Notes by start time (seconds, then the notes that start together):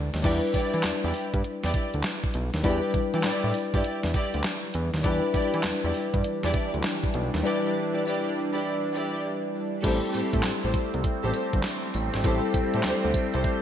Already playing: D2
0.14 D#2, snare, closed hi-hat
0.23 E2 G3 D4 E4 G4 B4 D5, kick, closed hi-hat, crash
0.54 E3 E4 G4 D5, kick, closed hi-hat
0.74 E3, closed hi-hat
0.83 E2, snare, clap, closed hi-hat
1.04 E2 E4 G4 D5
1.14 open hi-hat
1.34 G2, kick, closed hi-hat
1.44 closed hi-hat
1.63 E2 E4 G4 D5, snare
1.74 kick, closed hi-hat
1.94 D2, closed hi-hat
2.03 snare, clap, closed hi-hat
2.24 kick
2.34 B1, closed hi-hat
2.54 D#2, snare, closed hi-hat
2.63 E2 G3 D4 E4 G4 B4 D5, kick, closed hi-hat
2.94 E3, kick, closed hi-hat
3.14 E3 E4 G4 D5, closed hi-hat
3.23 A2 E4 G4 D5, snare, clap, closed hi-hat
3.44 A2
3.54 open hi-hat
3.74 G2 E4 G4 D5, kick, closed hi-hat
3.84 closed hi-hat
4.03 E2, snare
4.14 E4 G4 D5, kick, closed hi-hat
4.34 D2, closed hi-hat
4.43 snare, clap, closed hi-hat
4.74 E2, closed hi-hat
4.94 D#2, snare, closed hi-hat
5.03 E2 E3 G3 D4 E4 G4 B4 D5, kick, closed hi-hat
5.34 E3 E4 G4 D5, kick, closed hi-hat
5.54 E3, closed hi-hat
5.63 E2, snare, clap, closed hi-hat
5.84 E2 E4 G4 D5
5.94 open hi-hat
6.14 G2, kick, closed hi-hat
6.24 closed hi-hat
6.43 E2 E4 G4 D5, snare
6.54 kick, closed hi-hat
6.74 D2, closed hi-hat
6.83 snare, clap, closed hi-hat
7.04 kick
7.14 B1, closed hi-hat
7.34 D#2, snare, closed hi-hat
7.43 G3 D4 E4 G4 B4 D5
7.93 E4 G4 D5
8.04 E4 G4 D5
8.53 E4 G4 D5
8.94 E4 G4 D5
9.83 A1 G3 A3 C4 E4 G4 A4 C5, kick, closed hi-hat, crash, tambourine
10.13 A2 G4 A4 C5, closed hi-hat, tambourine
10.33 A2, kick, closed hi-hat
10.43 A1, snare, clap, closed hi-hat, tambourine
10.63 A1 G4 A4 C5
10.74 kick, closed hi-hat, tambourine
10.94 C2, closed hi-hat
11.04 kick, closed hi-hat
11.23 A1 G4 A4 C5
11.34 closed hi-hat, tambourine
11.53 G1, kick, closed hi-hat
11.63 snare, clap, closed hi-hat, tambourine
11.94 A1, closed hi-hat, tambourine
12.14 G#1, snare, closed hi-hat
12.23 A1 G3 C4 E4 G4 A4 C5, kick, closed hi-hat, tambourine
12.54 A2, kick, closed hi-hat, tambourine
12.74 A2 G4 A4 C5, closed hi-hat
12.83 D2 G4 A4 C5, snare, clap, closed hi-hat, tambourine
13.05 D2
13.14 kick, closed hi-hat, tambourine
13.34 C2 G4 A4 C5, closed hi-hat
13.44 kick, closed hi-hat